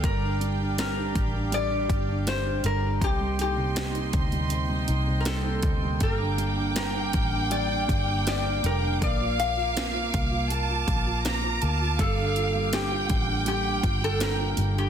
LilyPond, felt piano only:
\new Staff \with { instrumentName = "Felt piano" } { \time 4/4 \key g \minor \tempo 4 = 81 g16 d'16 g16 d'16 g16 d'16 g16 d'16 g16 d'16 g16 d'16 g16 d'16 g16 d'16 | c16 g16 ees'16 c16 g16 ees'16 c16 g16 c16 g16 ees'16 c16 g16 ees'16 c16 g16 | g16 d'16 g16 d'16 g16 d'16 g16 d'16 g16 d'16 g16 d'16 g16 d'16 g16 d'16 | bes16 f'16 bes16 f'16 bes16 f'16 bes16 f'16 bes16 f'16 bes16 f'16 bes16 f'16 bes16 f'16 |
g16 d'16 f'16 g16 d'16 f'16 g16 d'16 g16 d'16 f'16 g16 d'16 f'16 g16 d'16 | }